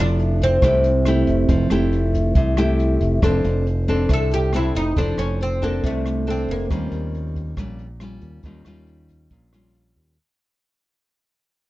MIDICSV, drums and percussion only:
0, 0, Header, 1, 2, 480
1, 0, Start_track
1, 0, Key_signature, -1, "major"
1, 0, Tempo, 434783
1, 1643, Time_signature, 4, 2, 24, 8
1, 12909, End_track
2, 0, Start_track
2, 0, Title_t, "Drums"
2, 211, Note_on_c, 9, 42, 40
2, 321, Note_off_c, 9, 42, 0
2, 447, Note_on_c, 9, 36, 25
2, 459, Note_on_c, 9, 42, 46
2, 558, Note_off_c, 9, 36, 0
2, 569, Note_off_c, 9, 42, 0
2, 685, Note_on_c, 9, 36, 61
2, 690, Note_on_c, 9, 37, 59
2, 690, Note_on_c, 9, 42, 54
2, 796, Note_off_c, 9, 36, 0
2, 801, Note_off_c, 9, 37, 0
2, 801, Note_off_c, 9, 42, 0
2, 925, Note_on_c, 9, 42, 43
2, 1035, Note_off_c, 9, 42, 0
2, 1164, Note_on_c, 9, 37, 60
2, 1164, Note_on_c, 9, 42, 47
2, 1274, Note_off_c, 9, 37, 0
2, 1274, Note_off_c, 9, 42, 0
2, 1402, Note_on_c, 9, 36, 24
2, 1406, Note_on_c, 9, 42, 43
2, 1513, Note_off_c, 9, 36, 0
2, 1516, Note_off_c, 9, 42, 0
2, 1641, Note_on_c, 9, 36, 58
2, 1642, Note_on_c, 9, 42, 65
2, 1752, Note_off_c, 9, 36, 0
2, 1753, Note_off_c, 9, 42, 0
2, 1879, Note_on_c, 9, 37, 56
2, 1879, Note_on_c, 9, 42, 43
2, 1990, Note_off_c, 9, 37, 0
2, 1990, Note_off_c, 9, 42, 0
2, 2124, Note_on_c, 9, 42, 44
2, 2235, Note_off_c, 9, 42, 0
2, 2360, Note_on_c, 9, 36, 26
2, 2367, Note_on_c, 9, 42, 47
2, 2471, Note_off_c, 9, 36, 0
2, 2477, Note_off_c, 9, 42, 0
2, 2597, Note_on_c, 9, 36, 60
2, 2597, Note_on_c, 9, 42, 57
2, 2707, Note_off_c, 9, 42, 0
2, 2708, Note_off_c, 9, 36, 0
2, 2839, Note_on_c, 9, 37, 61
2, 2839, Note_on_c, 9, 42, 42
2, 2949, Note_off_c, 9, 37, 0
2, 2949, Note_off_c, 9, 42, 0
2, 3082, Note_on_c, 9, 42, 41
2, 3192, Note_off_c, 9, 42, 0
2, 3318, Note_on_c, 9, 36, 24
2, 3323, Note_on_c, 9, 42, 42
2, 3429, Note_off_c, 9, 36, 0
2, 3434, Note_off_c, 9, 42, 0
2, 3559, Note_on_c, 9, 36, 59
2, 3564, Note_on_c, 9, 37, 62
2, 3564, Note_on_c, 9, 42, 55
2, 3669, Note_off_c, 9, 36, 0
2, 3675, Note_off_c, 9, 37, 0
2, 3675, Note_off_c, 9, 42, 0
2, 3803, Note_on_c, 9, 42, 39
2, 3913, Note_off_c, 9, 42, 0
2, 4047, Note_on_c, 9, 42, 42
2, 4158, Note_off_c, 9, 42, 0
2, 4280, Note_on_c, 9, 36, 24
2, 4283, Note_on_c, 9, 42, 44
2, 4391, Note_off_c, 9, 36, 0
2, 4394, Note_off_c, 9, 42, 0
2, 4517, Note_on_c, 9, 37, 56
2, 4517, Note_on_c, 9, 42, 56
2, 4519, Note_on_c, 9, 36, 56
2, 4627, Note_off_c, 9, 37, 0
2, 4627, Note_off_c, 9, 42, 0
2, 4629, Note_off_c, 9, 36, 0
2, 4759, Note_on_c, 9, 42, 44
2, 4870, Note_off_c, 9, 42, 0
2, 4998, Note_on_c, 9, 37, 60
2, 4998, Note_on_c, 9, 42, 47
2, 5108, Note_off_c, 9, 37, 0
2, 5108, Note_off_c, 9, 42, 0
2, 5240, Note_on_c, 9, 36, 24
2, 5246, Note_on_c, 9, 42, 46
2, 5351, Note_off_c, 9, 36, 0
2, 5356, Note_off_c, 9, 42, 0
2, 5481, Note_on_c, 9, 36, 63
2, 5482, Note_on_c, 9, 42, 60
2, 5591, Note_off_c, 9, 36, 0
2, 5592, Note_off_c, 9, 42, 0
2, 5719, Note_on_c, 9, 37, 55
2, 5719, Note_on_c, 9, 42, 40
2, 5830, Note_off_c, 9, 37, 0
2, 5830, Note_off_c, 9, 42, 0
2, 5967, Note_on_c, 9, 42, 41
2, 6078, Note_off_c, 9, 42, 0
2, 6204, Note_on_c, 9, 36, 25
2, 6207, Note_on_c, 9, 42, 48
2, 6314, Note_off_c, 9, 36, 0
2, 6318, Note_off_c, 9, 42, 0
2, 6442, Note_on_c, 9, 36, 59
2, 6442, Note_on_c, 9, 42, 57
2, 6552, Note_off_c, 9, 36, 0
2, 6552, Note_off_c, 9, 42, 0
2, 6686, Note_on_c, 9, 37, 57
2, 6686, Note_on_c, 9, 42, 44
2, 6797, Note_off_c, 9, 37, 0
2, 6797, Note_off_c, 9, 42, 0
2, 6927, Note_on_c, 9, 42, 39
2, 7037, Note_off_c, 9, 42, 0
2, 7162, Note_on_c, 9, 36, 24
2, 7170, Note_on_c, 9, 42, 39
2, 7273, Note_off_c, 9, 36, 0
2, 7281, Note_off_c, 9, 42, 0
2, 7403, Note_on_c, 9, 36, 59
2, 7405, Note_on_c, 9, 37, 55
2, 7405, Note_on_c, 9, 42, 55
2, 7513, Note_off_c, 9, 36, 0
2, 7516, Note_off_c, 9, 37, 0
2, 7516, Note_off_c, 9, 42, 0
2, 7642, Note_on_c, 9, 42, 38
2, 7752, Note_off_c, 9, 42, 0
2, 7886, Note_on_c, 9, 42, 38
2, 7997, Note_off_c, 9, 42, 0
2, 8120, Note_on_c, 9, 36, 25
2, 8126, Note_on_c, 9, 42, 42
2, 8231, Note_off_c, 9, 36, 0
2, 8236, Note_off_c, 9, 42, 0
2, 8359, Note_on_c, 9, 36, 58
2, 8360, Note_on_c, 9, 37, 57
2, 8360, Note_on_c, 9, 42, 56
2, 8469, Note_off_c, 9, 36, 0
2, 8470, Note_off_c, 9, 37, 0
2, 8470, Note_off_c, 9, 42, 0
2, 8595, Note_on_c, 9, 42, 41
2, 8706, Note_off_c, 9, 42, 0
2, 8833, Note_on_c, 9, 37, 60
2, 8833, Note_on_c, 9, 42, 43
2, 8943, Note_off_c, 9, 37, 0
2, 8943, Note_off_c, 9, 42, 0
2, 9067, Note_on_c, 9, 42, 42
2, 9074, Note_on_c, 9, 36, 23
2, 9177, Note_off_c, 9, 42, 0
2, 9185, Note_off_c, 9, 36, 0
2, 9304, Note_on_c, 9, 42, 58
2, 9313, Note_on_c, 9, 36, 61
2, 9415, Note_off_c, 9, 42, 0
2, 9424, Note_off_c, 9, 36, 0
2, 9548, Note_on_c, 9, 37, 52
2, 9548, Note_on_c, 9, 42, 39
2, 9658, Note_off_c, 9, 37, 0
2, 9658, Note_off_c, 9, 42, 0
2, 9792, Note_on_c, 9, 42, 41
2, 9902, Note_off_c, 9, 42, 0
2, 10034, Note_on_c, 9, 42, 44
2, 10035, Note_on_c, 9, 36, 23
2, 10144, Note_off_c, 9, 42, 0
2, 10146, Note_off_c, 9, 36, 0
2, 10274, Note_on_c, 9, 42, 55
2, 10276, Note_on_c, 9, 36, 54
2, 10385, Note_off_c, 9, 42, 0
2, 10387, Note_off_c, 9, 36, 0
2, 10518, Note_on_c, 9, 37, 55
2, 10518, Note_on_c, 9, 42, 40
2, 10628, Note_off_c, 9, 37, 0
2, 10628, Note_off_c, 9, 42, 0
2, 10758, Note_on_c, 9, 42, 39
2, 10868, Note_off_c, 9, 42, 0
2, 10996, Note_on_c, 9, 36, 23
2, 10999, Note_on_c, 9, 42, 40
2, 11106, Note_off_c, 9, 36, 0
2, 11109, Note_off_c, 9, 42, 0
2, 12909, End_track
0, 0, End_of_file